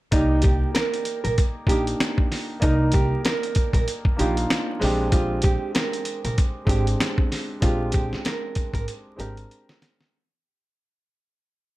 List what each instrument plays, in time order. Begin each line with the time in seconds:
0.11 upright bass C2, grand piano A#3 D#4 G4 D5, nylon-string guitar D#4, kick, closed hi-hat
0.42 nylon-string guitar G4, kick, closed hi-hat
0.75 nylon-string guitar A#4, snare, closed hi-hat
0.94 closed hi-hat
1.05 closed hi-hat
1.24 upright bass A#1, nylon-string guitar A#4, closed hi-hat
1.38 kick, closed hi-hat
1.67 upright bass A#1, grand piano A#3 D4 D#4, nylon-string guitar G4, kick, closed hi-hat
1.71 grand piano G4
1.87 closed hi-hat
2.00 snare, closed hi-hat
2.18 kick
2.32 snare, open hi-hat
2.60 upright bass C2, grand piano A#3 D#4 D5, nylon-string guitar D#4, kick, closed hi-hat
2.64 grand piano A#4
2.92 nylon-string guitar G4, kick, closed hi-hat
3.25 nylon-string guitar A#4, snare, closed hi-hat
3.43 closed hi-hat
3.55 kick, closed hi-hat
3.73 upright bass A#1, nylon-string guitar A#4, kick, closed hi-hat
3.88 closed hi-hat
4.05 kick
4.17 upright bass A#1, grand piano A#3 D4 D#4, nylon-string guitar G4, closed hi-hat
4.21 grand piano F4
4.37 closed hi-hat
4.50 snare, closed hi-hat
4.80 upright bass A#1, grand piano G#3 C4 D4 G4, open hi-hat
5.09 grand piano G#3 C4 D4 G4, nylon-string guitar F4, kick, closed hi-hat
5.42 nylon-string guitar G4, kick, closed hi-hat
5.75 nylon-string guitar A#4, snare, closed hi-hat
5.93 closed hi-hat
6.05 closed hi-hat
6.25 upright bass A#1, nylon-string guitar A#4, closed hi-hat
6.38 kick, closed hi-hat
6.65 upright bass G#1, grand piano G#3 C4 D4 G4, nylon-string guitar G4, kick
6.69 closed hi-hat
6.87 closed hi-hat
7.00 snare, closed hi-hat
7.18 kick
7.32 snare, open hi-hat
7.61 upright bass A#1, grand piano G#3 C4 D4, nylon-string guitar F4, kick, closed hi-hat
7.65 grand piano G4
7.92 nylon-string guitar G4, kick, closed hi-hat
8.13 snare
8.25 nylon-string guitar A#4, snare, closed hi-hat
8.55 kick, closed hi-hat
8.74 upright bass G#1, nylon-string guitar A#4, kick, closed hi-hat
8.88 closed hi-hat
9.16 upright bass G#1, grand piano G#3 C4 D4, nylon-string guitar G4, closed hi-hat
9.20 grand piano A#4
9.37 closed hi-hat
9.51 closed hi-hat
9.69 snare
9.82 snare, closed hi-hat
10.00 snare